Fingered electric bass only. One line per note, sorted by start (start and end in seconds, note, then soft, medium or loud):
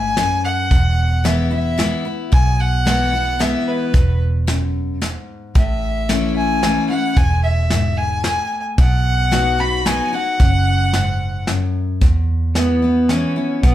0.00 0.31 A1 medium
0.71 1.92 E1 medium
2.33 3.54 B1 medium
3.94 5.15 E1 medium
5.55 6.77 A1 medium
7.17 8.38 E1 medium
8.78 9.99 B1 medium
10.40 11.61 F#1 medium
12.01 13.23 E2 medium
13.63 13.75 B1 medium